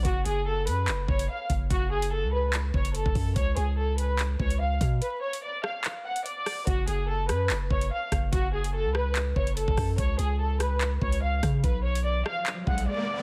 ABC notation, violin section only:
X:1
M:4/4
L:1/8
Q:1/4=145
K:F#m
V:1 name="Violin section"
F G A B z c ^e z | F G A B z c A2 | c G A B z c ^e z | B c d ^e z f d2 |
F G A B z c ^e z | F G A B z c A2 | c G A B z c ^e z | B c d ^e z f d2 |]